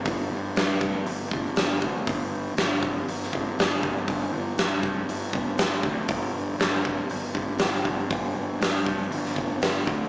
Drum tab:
HH |o---o---o---o---|o---o---o---o---|o---o---o---o---|o---o---o---o---|
SD |----o-------o---|----o----o--o---|----o-------o---|----o-------o---|
BD |o-----o---o---o-|o-----o---o---o-|o-----o---o---o-|o-----o---o---o-|

HH |o---o---o---o---|
SD |----o----o--o---|
BD |o-----o---o---o-|